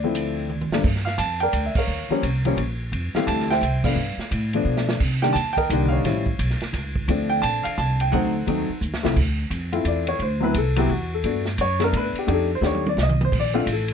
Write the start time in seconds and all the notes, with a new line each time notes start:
Already playing: D2 D5
0.04 F3 A3 C4 E4
0.15 hi-hat pedal, ride
0.50 mid tom
0.61 mid tom
0.70 G2 F3 A3 A#3, muted upright bass stroke, snare
0.74 D4
0.84 G2, kick, crash
0.96 snare
1.05 F5, snare
1.18 F2 A5, kick, hi-hat pedal, ride
1.40 A#4 D5 G5, ride
1.53 D2, kick, hi-hat pedal, ride
1.66 E5
1.75 A#4 C#5 F5, muted upright bass stroke, kick, crash
1.87 D#2
2.09 F3 G3 A#3 C#4, muted upright bass stroke
2.23 C2, kick, hi-hat pedal, ride
2.45 F3 G3 A#3 C#4, ride
2.57 A#1, kick, ride
2.92 F2, kick, ride
3.14 E3 G3 A3 C4 F5, muted upright bass stroke, snare
3.27 D2 A5, kick, hi-hat pedal, ride
3.40 snare
3.50 C5 E5 G5, snare
3.61 C2, kick, hi-hat pedal, ride
3.84 F3 A3 B3 D4 B4 D5 F5, kick, crash
3.96 G2
4.17 muted upright bass stroke, snare
4.31 A2, kick, hi-hat pedal, ride
4.53 F3 A3 B3 D4, ride
4.65 B2
4.77 snare
4.89 snare
5.00 C3, kick, crash
5.22 D#3 G3 A#3 D4 G5, snare
5.33 D#2 A5, kick, hi-hat pedal, ride
5.53 G5
5.57 A#4 D#5, kick, ride
5.70 C2 D3 D#3 G3 A#3, kick, hi-hat pedal, ride
5.88 C#5 F5
6.04 A1 F3 G3 C#4 E4, kick, snare, ride
6.26 kick
6.39 B1, kick, hi-hat pedal, ride
6.50 snare
6.60 muted upright bass stroke, snare, ride
6.73 C#2, kick, snare, ride
6.96 kick
7.08 D2 F3 A3 C4 D4, kick, ride
7.30 G5
7.42 A#1 A5, kick, hi-hat pedal, ride
7.63 F5, muted upright bass stroke, ride
7.78 C2 A5, kick, hi-hat pedal
8.00 G5, ride
8.12 D2 F#3 A3 C4 D#4 A4 C5 F#5, kick, ride
8.47 D#2 F#3 A3 C4 D#4, kick, ride
8.69 muted upright bass stroke
8.81 D#2, hi-hat pedal
8.93 D2, snare
9.03 C2 D2 F3 A3 C4 E4, snare
9.16 D2, kick, crash
9.50 F2, kick, hi-hat pedal, ride
9.72 A3 C4 E4 F4, ride
9.85 E2 D5, kick, hi-hat pedal, ride
10.07 C#5, ride
10.19 D2 C5, kick, ride
10.40 F#3 B3 C4 E4 B4
10.54 C2 G#4, kick, hi-hat pedal, ride
10.58 A4
10.76 F#3 B3 C4 E4 G4, ride
10.89 E2 F#4, kick
11.14 A4
11.24 G2 A3 B3 D4 F#4, kick, ride
11.45 snare
11.58 F#2 C#5, kick, hi-hat pedal, ride
11.80 A3 B3 D4 A4, snare, ride
11.84 A#4
11.93 A2, kick, hi-hat pedal, ride
11.97 B4
12.13 muted upright bass stroke, ride
12.19 G4
12.27 F2 A3 D4 D#4 G4, kick, ride
12.34 A4
12.55 C5
12.61 D#2 A3 D4 D#4 G4, snare, hi-hat pedal
12.67 C#5
12.74 high tom
12.86 D5, high tom
12.97 C2, snare, hi-hat pedal
13.03 D#5
13.09 mid tom
13.21 C5, mid tom
13.32 A#1, kick, crash
13.39 D5
13.54 A3 C4 D4 F4
13.59 F4
13.66 A1, kick, hi-hat pedal, ride
13.73 A4
13.88 ride